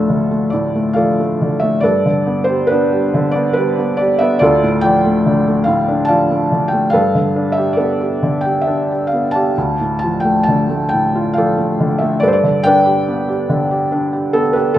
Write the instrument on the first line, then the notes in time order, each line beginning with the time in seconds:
felt piano
Already playing: D2 A2 F3 A3 D4 F4 A4 E5 F5
0.09 D3
0.31 A3
0.50 A2 D5
0.75 A3
0.93 A4 D5 F5
0.98 F3
1.20 A3
1.41 D3
1.60 A3 E5
1.80 G2 A4 B4 D5
2.06 D3
2.27 B3
2.44 C5
2.49 G3
2.67 D4 B4
2.72 B3
2.92 G3
3.14 D3
3.31 B3 D5
3.53 G3 B4
3.79 B3
3.97 G3 D5
4.19 B3 E5
4.39 D2 F4 A4 D5
4.63 A2
4.81 F3 D5 G5
5.05 A3
5.26 D3
5.47 A3
5.64 A2 F5
5.89 D4
6.05 D5 F5 A5
6.10 F3
6.30 A3
6.52 D3
6.68 G5
6.73 A3
6.90 A4 B4 F5
6.94 G2
7.15 D3
7.36 D4
7.52 E5
7.58 G4
7.73 A4 D5
7.77 B3 B4
8.01 G4
8.23 D3
8.41 G5
8.45 G4
8.62 E5
8.67 D4
8.91 G4
9.07 F5
9.13 B3
9.31 D5 F5 A5
9.35 G4
9.58 D2
9.80 A2
9.99 A5
10.04 F3
10.20 G5
10.24 A3
10.43 A5
10.48 D3
10.69 A3
10.89 G5
10.93 A2
11.15 F4
11.33 F3 D5 F5
11.38 A4
11.58 A3
11.80 D3
11.98 A3 E5
12.20 G2 A4 B4 D5
12.28 C5
12.33 D5
12.44 D3
12.63 D4 B4 D5 G5
12.86 G4
13.08 B3
13.29 G4
13.49 D3
13.71 G4
13.92 D4
14.13 G4
14.33 B3 A4
14.53 G4 B4
14.74 A4